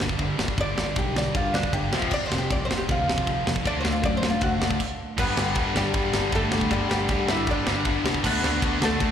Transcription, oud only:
0, 0, Header, 1, 2, 480
1, 0, Start_track
1, 0, Tempo, 382897
1, 732, Time_signature, 4, 2, 24, 8
1, 11425, End_track
2, 0, Start_track
2, 0, Title_t, "Oud"
2, 0, Program_c, 0, 24
2, 760, Note_on_c, 0, 74, 112
2, 1213, Note_off_c, 0, 74, 0
2, 1238, Note_on_c, 0, 67, 92
2, 1459, Note_off_c, 0, 67, 0
2, 1477, Note_on_c, 0, 74, 87
2, 1699, Note_off_c, 0, 74, 0
2, 1704, Note_on_c, 0, 65, 76
2, 1931, Note_on_c, 0, 62, 97
2, 1932, Note_off_c, 0, 65, 0
2, 2166, Note_off_c, 0, 62, 0
2, 2176, Note_on_c, 0, 67, 103
2, 2409, Note_off_c, 0, 67, 0
2, 2677, Note_on_c, 0, 74, 106
2, 2822, Note_off_c, 0, 74, 0
2, 2832, Note_on_c, 0, 72, 90
2, 2980, Note_off_c, 0, 72, 0
2, 2986, Note_on_c, 0, 67, 87
2, 3137, Note_off_c, 0, 67, 0
2, 3159, Note_on_c, 0, 74, 96
2, 3304, Note_off_c, 0, 74, 0
2, 3324, Note_on_c, 0, 72, 92
2, 3466, Note_off_c, 0, 72, 0
2, 3480, Note_on_c, 0, 67, 90
2, 3625, Note_off_c, 0, 67, 0
2, 3646, Note_on_c, 0, 65, 91
2, 3865, Note_off_c, 0, 65, 0
2, 4599, Note_on_c, 0, 74, 124
2, 4745, Note_off_c, 0, 74, 0
2, 4771, Note_on_c, 0, 72, 87
2, 4910, Note_off_c, 0, 72, 0
2, 4917, Note_on_c, 0, 65, 88
2, 5064, Note_off_c, 0, 65, 0
2, 5081, Note_on_c, 0, 74, 94
2, 5224, Note_off_c, 0, 74, 0
2, 5229, Note_on_c, 0, 72, 90
2, 5379, Note_off_c, 0, 72, 0
2, 5390, Note_on_c, 0, 65, 91
2, 5540, Note_off_c, 0, 65, 0
2, 5551, Note_on_c, 0, 66, 89
2, 5778, Note_off_c, 0, 66, 0
2, 6506, Note_on_c, 0, 59, 93
2, 6507, Note_on_c, 0, 71, 98
2, 7172, Note_off_c, 0, 59, 0
2, 7226, Note_on_c, 0, 55, 85
2, 7228, Note_off_c, 0, 71, 0
2, 7233, Note_on_c, 0, 67, 106
2, 7890, Note_off_c, 0, 55, 0
2, 7894, Note_off_c, 0, 67, 0
2, 7961, Note_on_c, 0, 57, 85
2, 7965, Note_on_c, 0, 69, 94
2, 8395, Note_off_c, 0, 57, 0
2, 8395, Note_off_c, 0, 69, 0
2, 8418, Note_on_c, 0, 55, 93
2, 8435, Note_on_c, 0, 67, 107
2, 8629, Note_off_c, 0, 55, 0
2, 8644, Note_on_c, 0, 55, 70
2, 8648, Note_off_c, 0, 67, 0
2, 8668, Note_on_c, 0, 67, 91
2, 8871, Note_off_c, 0, 55, 0
2, 8893, Note_off_c, 0, 67, 0
2, 8909, Note_on_c, 0, 55, 80
2, 8912, Note_on_c, 0, 67, 79
2, 9125, Note_off_c, 0, 55, 0
2, 9136, Note_off_c, 0, 67, 0
2, 9141, Note_on_c, 0, 76, 72
2, 9152, Note_on_c, 0, 64, 99
2, 9360, Note_off_c, 0, 76, 0
2, 9388, Note_off_c, 0, 64, 0
2, 9411, Note_on_c, 0, 74, 64
2, 9417, Note_on_c, 0, 62, 78
2, 10061, Note_off_c, 0, 74, 0
2, 10064, Note_off_c, 0, 62, 0
2, 10347, Note_on_c, 0, 59, 91
2, 10361, Note_on_c, 0, 71, 116
2, 11007, Note_off_c, 0, 59, 0
2, 11073, Note_on_c, 0, 57, 83
2, 11084, Note_off_c, 0, 71, 0
2, 11094, Note_on_c, 0, 69, 107
2, 11425, Note_off_c, 0, 57, 0
2, 11425, Note_off_c, 0, 69, 0
2, 11425, End_track
0, 0, End_of_file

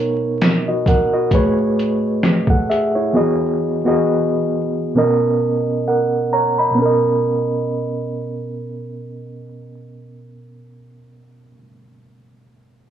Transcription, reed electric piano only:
0, 0, Header, 1, 2, 480
1, 0, Start_track
1, 0, Key_signature, 5, "major"
1, 0, Tempo, 909091
1, 1655, Time_signature, 4, 2, 24, 8
1, 6811, End_track
2, 0, Start_track
2, 0, Title_t, "Reed electric piano"
2, 0, Program_c, 0, 4
2, 0, Control_c, 0, 64, 127
2, 0, Note_on_c, 0, 47, 70
2, 0, Note_on_c, 0, 59, 72
2, 0, Note_on_c, 0, 63, 71
2, 0, Note_on_c, 0, 70, 68
2, 0, Note_on_c, 0, 73, 80
2, 359, Note_on_c, 0, 75, 58
2, 363, Note_on_c, 0, 66, 53
2, 454, Note_off_c, 0, 75, 0
2, 457, Note_off_c, 0, 66, 0
2, 465, Note_on_c, 0, 78, 67
2, 467, Note_off_c, 0, 70, 0
2, 467, Note_on_c, 0, 70, 60
2, 589, Note_off_c, 0, 78, 0
2, 590, Note_off_c, 0, 70, 0
2, 599, Note_on_c, 0, 75, 66
2, 601, Note_on_c, 0, 66, 57
2, 695, Note_on_c, 0, 45, 81
2, 699, Note_on_c, 0, 57, 72
2, 702, Note_off_c, 0, 73, 0
2, 702, Control_c, 0, 64, 0
2, 703, Note_off_c, 0, 63, 0
2, 703, Note_on_c, 0, 68, 75
2, 704, Note_off_c, 0, 47, 0
2, 706, Note_off_c, 0, 59, 0
2, 708, Note_on_c, 0, 71, 75
2, 713, Note_on_c, 0, 73, 85
2, 804, Control_c, 0, 64, 127
2, 823, Note_off_c, 0, 75, 0
2, 824, Note_off_c, 0, 66, 0
2, 1179, Note_off_c, 0, 68, 0
2, 1182, Note_off_c, 0, 71, 0
2, 1184, Note_off_c, 0, 73, 0
2, 1319, Note_on_c, 0, 78, 63
2, 1323, Note_on_c, 0, 69, 50
2, 1356, Note_off_c, 0, 45, 0
2, 1358, Note_off_c, 0, 57, 0
2, 1415, Note_off_c, 0, 78, 0
2, 1416, Note_off_c, 0, 69, 0
2, 1423, Note_on_c, 0, 76, 67
2, 1427, Note_on_c, 0, 68, 59
2, 1548, Note_off_c, 0, 76, 0
2, 1550, Note_off_c, 0, 68, 0
2, 1559, Note_on_c, 0, 73, 51
2, 1562, Note_on_c, 0, 64, 49
2, 1653, Note_on_c, 0, 52, 80
2, 1658, Note_on_c, 0, 59, 73
2, 1663, Control_c, 0, 64, 0
2, 1663, Note_on_c, 0, 66, 70
2, 1667, Note_on_c, 0, 68, 64
2, 1671, Note_on_c, 0, 75, 81
2, 1752, Control_c, 0, 64, 127
2, 1783, Note_off_c, 0, 73, 0
2, 1785, Note_off_c, 0, 64, 0
2, 1899, Note_off_c, 0, 52, 0
2, 1902, Note_off_c, 0, 59, 0
2, 1904, Note_off_c, 0, 66, 0
2, 1906, Note_off_c, 0, 68, 0
2, 1909, Note_off_c, 0, 75, 0
2, 2027, Note_on_c, 0, 52, 70
2, 2032, Note_on_c, 0, 59, 70
2, 2037, Note_on_c, 0, 66, 73
2, 2042, Note_on_c, 0, 68, 64
2, 2046, Note_on_c, 0, 75, 81
2, 2427, Note_off_c, 0, 52, 0
2, 2430, Note_off_c, 0, 59, 0
2, 2432, Note_off_c, 0, 66, 0
2, 2435, Note_off_c, 0, 68, 0
2, 2437, Note_off_c, 0, 75, 0
2, 2612, Note_on_c, 0, 47, 87
2, 2617, Note_on_c, 0, 59, 71
2, 2622, Note_on_c, 0, 61, 67
2, 2623, Control_c, 0, 64, 0
2, 2626, Note_on_c, 0, 70, 70
2, 2632, Note_on_c, 0, 75, 88
2, 2724, Control_c, 0, 64, 127
2, 2861, Note_off_c, 0, 70, 0
2, 2864, Note_off_c, 0, 75, 0
2, 3103, Note_on_c, 0, 78, 55
2, 3106, Note_on_c, 0, 70, 49
2, 3275, Note_off_c, 0, 47, 0
2, 3277, Note_off_c, 0, 59, 0
2, 3279, Note_off_c, 0, 61, 0
2, 3327, Note_off_c, 0, 78, 0
2, 3329, Note_off_c, 0, 70, 0
2, 3342, Note_on_c, 0, 82, 65
2, 3345, Note_on_c, 0, 73, 56
2, 3467, Note_off_c, 0, 82, 0
2, 3469, Note_off_c, 0, 73, 0
2, 3477, Note_on_c, 0, 83, 57
2, 3481, Note_on_c, 0, 75, 47
2, 3543, Note_on_c, 0, 47, 71
2, 3562, Note_on_c, 0, 59, 64
2, 3581, Note_on_c, 0, 61, 63
2, 3582, Control_c, 0, 64, 0
2, 3600, Note_on_c, 0, 70, 68
2, 3612, Note_off_c, 0, 75, 0
2, 3619, Note_on_c, 0, 75, 75
2, 3670, Control_c, 0, 64, 127
2, 3702, Note_off_c, 0, 83, 0
2, 6035, Note_off_c, 0, 47, 0
2, 6054, Note_off_c, 0, 59, 0
2, 6073, Note_off_c, 0, 61, 0
2, 6092, Note_off_c, 0, 70, 0
2, 6111, Note_off_c, 0, 75, 0
2, 6811, End_track
0, 0, End_of_file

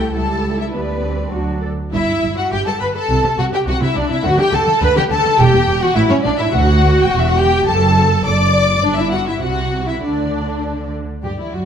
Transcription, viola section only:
0, 0, Header, 1, 2, 480
1, 0, Start_track
1, 0, Key_signature, 1, "major"
1, 0, Tempo, 595829
1, 595, Time_signature, 2, 2, 24, 8
1, 2027, Tempo, 574163
1, 7307, Tempo, 598802
1, 9567, End_track
2, 0, Start_track
2, 0, Title_t, "Viola section"
2, 0, Program_c, 0, 48
2, 0, Note_on_c, 0, 64, 84
2, 81, Note_off_c, 0, 64, 0
2, 114, Note_on_c, 0, 55, 72
2, 114, Note_on_c, 0, 64, 67
2, 588, Note_off_c, 0, 64, 0
2, 598, Note_off_c, 0, 55, 0
2, 606, Note_on_c, 0, 59, 59
2, 608, Note_on_c, 0, 55, 62
2, 837, Note_on_c, 0, 60, 60
2, 840, Note_off_c, 0, 59, 0
2, 1070, Note_off_c, 0, 55, 0
2, 1075, Note_off_c, 0, 60, 0
2, 1080, Note_on_c, 0, 54, 60
2, 1081, Note_on_c, 0, 62, 54
2, 1394, Note_off_c, 0, 54, 0
2, 1394, Note_off_c, 0, 62, 0
2, 1559, Note_on_c, 0, 64, 106
2, 1887, Note_off_c, 0, 64, 0
2, 1913, Note_on_c, 0, 66, 80
2, 2027, Note_off_c, 0, 66, 0
2, 2034, Note_on_c, 0, 67, 88
2, 2152, Note_off_c, 0, 67, 0
2, 2155, Note_on_c, 0, 69, 86
2, 2269, Note_on_c, 0, 71, 99
2, 2272, Note_off_c, 0, 69, 0
2, 2317, Note_off_c, 0, 71, 0
2, 2395, Note_on_c, 0, 69, 91
2, 2744, Note_off_c, 0, 69, 0
2, 2757, Note_on_c, 0, 66, 100
2, 2872, Note_off_c, 0, 66, 0
2, 2877, Note_on_c, 0, 67, 95
2, 2990, Note_off_c, 0, 67, 0
2, 2997, Note_on_c, 0, 66, 97
2, 3113, Note_off_c, 0, 66, 0
2, 3114, Note_on_c, 0, 64, 94
2, 3231, Note_off_c, 0, 64, 0
2, 3237, Note_on_c, 0, 62, 93
2, 3351, Note_off_c, 0, 62, 0
2, 3352, Note_on_c, 0, 64, 94
2, 3468, Note_off_c, 0, 64, 0
2, 3477, Note_on_c, 0, 66, 123
2, 3590, Note_off_c, 0, 66, 0
2, 3597, Note_on_c, 0, 67, 107
2, 3712, Note_on_c, 0, 69, 112
2, 3713, Note_off_c, 0, 67, 0
2, 3951, Note_off_c, 0, 69, 0
2, 3953, Note_on_c, 0, 71, 109
2, 4069, Note_off_c, 0, 71, 0
2, 4074, Note_on_c, 0, 67, 92
2, 4121, Note_off_c, 0, 67, 0
2, 4195, Note_on_c, 0, 69, 122
2, 4426, Note_off_c, 0, 69, 0
2, 4436, Note_on_c, 0, 67, 115
2, 4790, Note_off_c, 0, 67, 0
2, 4794, Note_on_c, 0, 66, 105
2, 4840, Note_off_c, 0, 66, 0
2, 4905, Note_on_c, 0, 64, 110
2, 5020, Note_off_c, 0, 64, 0
2, 5022, Note_on_c, 0, 61, 98
2, 5069, Note_off_c, 0, 61, 0
2, 5141, Note_on_c, 0, 62, 110
2, 5188, Note_off_c, 0, 62, 0
2, 5263, Note_on_c, 0, 64, 105
2, 5376, Note_off_c, 0, 64, 0
2, 5377, Note_on_c, 0, 66, 127
2, 6082, Note_off_c, 0, 66, 0
2, 6093, Note_on_c, 0, 67, 109
2, 6336, Note_off_c, 0, 67, 0
2, 6345, Note_on_c, 0, 69, 120
2, 6826, Note_off_c, 0, 69, 0
2, 6828, Note_on_c, 0, 74, 103
2, 7301, Note_off_c, 0, 74, 0
2, 7313, Note_on_c, 0, 62, 99
2, 7427, Note_off_c, 0, 62, 0
2, 7428, Note_on_c, 0, 64, 86
2, 7543, Note_on_c, 0, 66, 90
2, 7544, Note_off_c, 0, 64, 0
2, 7659, Note_on_c, 0, 64, 86
2, 7661, Note_off_c, 0, 66, 0
2, 7779, Note_off_c, 0, 64, 0
2, 7780, Note_on_c, 0, 66, 83
2, 8142, Note_off_c, 0, 66, 0
2, 8147, Note_on_c, 0, 64, 72
2, 8266, Note_off_c, 0, 64, 0
2, 8268, Note_on_c, 0, 62, 89
2, 8981, Note_off_c, 0, 62, 0
2, 9233, Note_on_c, 0, 67, 68
2, 9280, Note_off_c, 0, 67, 0
2, 9361, Note_on_c, 0, 64, 59
2, 9472, Note_off_c, 0, 64, 0
2, 9478, Note_on_c, 0, 66, 69
2, 9567, Note_off_c, 0, 66, 0
2, 9567, End_track
0, 0, End_of_file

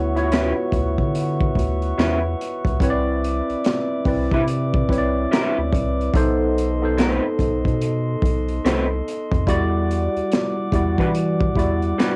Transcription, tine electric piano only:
0, 0, Header, 1, 2, 480
1, 0, Start_track
1, 0, Tempo, 833333
1, 1615, Time_signature, 4, 2, 24, 8
1, 7004, End_track
2, 0, Start_track
2, 0, Title_t, "Tine electric piano"
2, 0, Program_c, 0, 4
2, 0, Control_c, 0, 64, 127
2, 0, Note_on_c, 0, 59, 104
2, 0, Note_on_c, 0, 64, 98
2, 0, Note_on_c, 0, 66, 102
2, 0, Note_on_c, 0, 73, 107
2, 87, Note_off_c, 0, 59, 0
2, 87, Note_on_c, 0, 59, 89
2, 93, Note_off_c, 0, 64, 0
2, 93, Note_on_c, 0, 64, 82
2, 99, Note_on_c, 0, 65, 66
2, 104, Note_off_c, 0, 73, 0
2, 104, Note_on_c, 0, 73, 99
2, 120, Note_off_c, 0, 65, 0
2, 137, Note_off_c, 0, 66, 0
2, 137, Note_on_c, 0, 66, 81
2, 877, Note_off_c, 0, 59, 0
2, 880, Note_off_c, 0, 64, 0
2, 885, Note_off_c, 0, 73, 0
2, 902, Note_off_c, 0, 66, 0
2, 1616, Note_on_c, 0, 60, 104
2, 1621, Control_c, 0, 64, 0
2, 1621, Note_on_c, 0, 64, 94
2, 1628, Note_on_c, 0, 71, 87
2, 1633, Note_on_c, 0, 73, 95
2, 1671, Note_off_c, 0, 73, 0
2, 1671, Note_on_c, 0, 74, 115
2, 1716, Control_c, 0, 64, 127
2, 2256, Note_off_c, 0, 60, 0
2, 2258, Note_off_c, 0, 64, 0
2, 2262, Note_off_c, 0, 71, 0
2, 2283, Note_off_c, 0, 74, 0
2, 2334, Note_on_c, 0, 60, 90
2, 2340, Note_on_c, 0, 64, 69
2, 2345, Note_on_c, 0, 71, 82
2, 2352, Note_on_c, 0, 74, 84
2, 2762, Note_off_c, 0, 60, 0
2, 2764, Note_off_c, 0, 64, 0
2, 2767, Note_off_c, 0, 71, 0
2, 2770, Note_off_c, 0, 74, 0
2, 2815, Note_on_c, 0, 60, 78
2, 2820, Note_on_c, 0, 64, 74
2, 2826, Note_on_c, 0, 71, 76
2, 2831, Note_on_c, 0, 73, 80
2, 2868, Note_on_c, 0, 74, 102
2, 2870, Note_off_c, 0, 73, 0
2, 3455, Note_off_c, 0, 60, 0
2, 3458, Note_off_c, 0, 64, 0
2, 3461, Note_off_c, 0, 71, 0
2, 3482, Note_off_c, 0, 74, 0
2, 3535, Note_on_c, 0, 59, 111
2, 3539, Note_on_c, 0, 63, 100
2, 3543, Control_c, 0, 64, 0
2, 3546, Note_on_c, 0, 69, 101
2, 3552, Note_on_c, 0, 72, 116
2, 3630, Control_c, 0, 64, 127
2, 3858, Note_off_c, 0, 59, 0
2, 3860, Note_off_c, 0, 63, 0
2, 3863, Note_off_c, 0, 69, 0
2, 3867, Note_off_c, 0, 72, 0
2, 3927, Note_on_c, 0, 59, 88
2, 3933, Note_on_c, 0, 63, 80
2, 3938, Note_on_c, 0, 69, 82
2, 3946, Note_on_c, 0, 72, 96
2, 4717, Note_off_c, 0, 59, 0
2, 4720, Note_off_c, 0, 63, 0
2, 4722, Note_off_c, 0, 69, 0
2, 4726, Note_off_c, 0, 72, 0
2, 5453, Note_on_c, 0, 55, 106
2, 5458, Note_on_c, 0, 64, 100
2, 5462, Control_c, 0, 64, 0
2, 5463, Note_on_c, 0, 66, 108
2, 5470, Note_on_c, 0, 74, 126
2, 5559, Control_c, 0, 64, 127
2, 6094, Note_off_c, 0, 55, 0
2, 6097, Note_off_c, 0, 64, 0
2, 6099, Note_off_c, 0, 66, 0
2, 6103, Note_off_c, 0, 74, 0
2, 6176, Note_on_c, 0, 55, 86
2, 6182, Note_on_c, 0, 64, 80
2, 6187, Note_on_c, 0, 66, 79
2, 6194, Note_on_c, 0, 74, 88
2, 6602, Note_off_c, 0, 55, 0
2, 6605, Note_off_c, 0, 64, 0
2, 6608, Note_off_c, 0, 66, 0
2, 6611, Note_off_c, 0, 74, 0
2, 6657, Note_on_c, 0, 55, 80
2, 6663, Note_on_c, 0, 64, 86
2, 6669, Note_on_c, 0, 66, 73
2, 6674, Note_on_c, 0, 74, 89
2, 7004, Note_off_c, 0, 55, 0
2, 7004, Note_off_c, 0, 64, 0
2, 7004, Note_off_c, 0, 66, 0
2, 7004, Note_off_c, 0, 74, 0
2, 7004, End_track
0, 0, End_of_file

